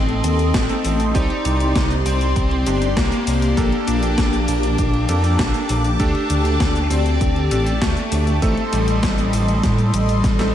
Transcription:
Already playing: A1 A3 C4 D#4 A4 D#5 C6
0.09 closed hi-hat
0.24 D#2, closed hi-hat, shaker
0.39 closed hi-hat, shaker
0.54 A1, kick, snare, closed hi-hat, shaker
0.69 A3 C4 D#4 A4, closed hi-hat, shaker
0.85 A1, open hi-hat, shaker
1.00 closed hi-hat, shaker
1.15 C2 C4 D#4 G4 D5 C6, kick, closed hi-hat, shaker
1.30 closed hi-hat
1.45 C2, closed hi-hat, shaker
1.60 closed hi-hat, shaker
1.75 C2, kick, snare, closed hi-hat, shaker
1.91 closed hi-hat, shaker
2.06 C2 C4, open hi-hat, shaker
2.21 closed hi-hat, shaker
2.36 C2, kick, closed hi-hat, shaker
2.51 closed hi-hat
2.66 G1 C4 D4 D#4 G4, closed hi-hat, shaker
2.82 closed hi-hat, shaker
2.97 C2 A#3, kick, snare, closed hi-hat, shaker
3.12 closed hi-hat, shaker
3.27 C2, open hi-hat, shaker
3.42 closed hi-hat, shaker
3.57 A#1 A#3 D4 G4 A4 A5 D6, kick, closed hi-hat, shaker
3.72 closed hi-hat
3.87 A#1 D4, closed hi-hat, shaker
4.03 closed hi-hat, shaker
4.18 A#1, kick, snare, closed hi-hat, shaker
4.33 closed hi-hat, shaker
4.48 A#1, open hi-hat, shaker
4.63 closed hi-hat, shaker
4.78 A#1, kick, closed hi-hat, shaker
4.94 closed hi-hat
5.09 F2 A#3 D4 G4 A4, closed hi-hat, shaker
5.24 closed hi-hat, shaker
5.39 A#1, kick, snare, closed hi-hat, shaker
5.54 closed hi-hat, shaker
5.69 A#1, open hi-hat, shaker
5.85 closed hi-hat, shaker
6.00 D2 A3 D4 G4 A4 D5, kick, closed hi-hat, shaker
6.15 closed hi-hat
6.30 D2, closed hi-hat, shaker
6.45 closed hi-hat, shaker
6.60 D2, kick, snare, closed hi-hat, shaker
6.76 closed hi-hat, shaker
6.90 D2 C4, open hi-hat, shaker
7.06 closed hi-hat, shaker
7.21 D2, kick, closed hi-hat, shaker
7.36 closed hi-hat
7.51 A1 A3 D4 G4 A4, closed hi-hat, shaker
7.67 closed hi-hat, shaker
7.81 D2 A3, kick, snare, closed hi-hat, shaker
7.97 closed hi-hat, shaker
8.12 D2, open hi-hat, shaker
8.27 closed hi-hat, shaker
8.42 A1 A3 C4 D#4 A4 D#5 C6, kick, closed hi-hat, shaker
8.57 closed hi-hat
8.72 A1 G3, closed hi-hat, shaker
8.88 closed hi-hat, shaker
9.03 A1, kick, snare, closed hi-hat, shaker
9.18 closed hi-hat, shaker
9.33 A1, open hi-hat, shaker
9.48 closed hi-hat, shaker
9.63 A2, kick, snare, closed hi-hat, shaker
9.79 closed hi-hat, shaker
9.94 A1, closed hi-hat, shaker
10.09 closed hi-hat, shaker
10.24 A1, kick, snare, closed hi-hat, shaker
10.39 A3 C4 D#4 A4, snare, closed hi-hat, shaker

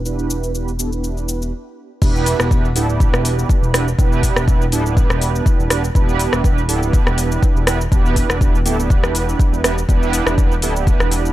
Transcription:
Already playing: E1
0.05 B3 D4 E4 G4 B4, shaker
0.19 shaker
0.30 shaker
0.43 shaker
0.54 B3 D4 E4 G4 B4, shaker
0.68 shaker
0.79 B3 D4 E4 G4 A4, shaker
0.92 B3 D4 E4 G4 B4, shaker
1.04 shaker
1.17 shaker
1.29 shaker
1.42 shaker
2.02 E1 B3 D4 E4 G4 B4, kick, crash, shaker
2.16 shaker
2.26 open hi-hat, shaker
2.40 E1, cross-stick, shaker
2.51 B3 D4 E4 G4 B4, kick, shaker
2.65 shaker
2.76 D1 B3 D4 E4 G4 A4, open hi-hat, shaker
2.89 B3 D4 E4 G4 B4, shaker
3.00 kick, shaker
3.13 E1, cross-stick, shaker
3.25 open hi-hat, shaker
3.39 shaker
3.49 kick, shaker
3.63 E1, shaker
3.74 B3 D4 E4 G4 B4, cross-stick, open hi-hat, shaker
3.88 shaker
3.98 E1 B3 D4 E4 G4 B4, kick, shaker
4.12 shaker
4.23 kick, open hi-hat, shaker
4.36 E1, cross-stick, shaker
4.48 B3 D4 E4 G4 B4, kick, shaker
4.62 shaker
4.72 D1 B3 D4 E4 G4 A4, open hi-hat, shaker
4.86 B3 D4 E4 G4 B4, shaker
4.97 kick, shaker
5.10 E1, cross-stick, shaker
5.21 open hi-hat, shaker
5.35 shaker
5.46 kick, shaker
5.59 E1, shaker
5.70 B3 D4 E4 G4 B4, cross-stick, open hi-hat, shaker
5.84 shaker
5.95 E1 B3 D4 E4 G4 B4, kick, shaker
6.09 shaker
6.19 open hi-hat, shaker
6.33 E1, cross-stick, shaker
6.44 B3 D4 E4 G4 B4, kick, shaker
6.58 shaker
6.69 D1 B3 D4 E4 G4 A4, open hi-hat, shaker
6.82 B3 D4 E4 G4 B4, shaker
6.93 kick, shaker
7.07 E1, cross-stick, shaker
7.18 open hi-hat, shaker
7.32 shaker
7.43 kick, shaker
7.56 E1, shaker
7.67 B3 D4 E4 G4 B4, cross-stick, open hi-hat, shaker
7.81 shaker
7.92 E1 B3 D4 E4 G4 B4, kick, shaker
8.06 shaker
8.16 kick, open hi-hat, shaker
8.29 E1, cross-stick, shaker
8.41 B3 D4 E4 G4 B4, kick, shaker
8.55 shaker
8.65 D1 B3 D4 E4 G4 A4, open hi-hat, shaker
8.79 B3 D4 E4 G4 B4, shaker
8.90 kick, shaker
9.03 E1, cross-stick, shaker
9.15 open hi-hat, shaker
9.29 shaker
9.39 kick, shaker
9.52 E1, shaker
9.64 B3 D4 E4 G4 B4, cross-stick, open hi-hat, shaker
9.78 shaker
9.89 E1 B3 D4 E4 G4 B4, kick, shaker
10.03 shaker
10.13 open hi-hat, shaker
10.26 E1, cross-stick, shaker
10.38 B3 D4 E4 G4 B4, kick, shaker
10.52 shaker
10.62 D1 B3 D4 E4 G4 A4, open hi-hat, shaker
10.76 B3 D4 E4 G4 B4, shaker
10.87 kick, shaker
11.00 E1, cross-stick, shaker
11.11 open hi-hat, shaker
11.26 shaker

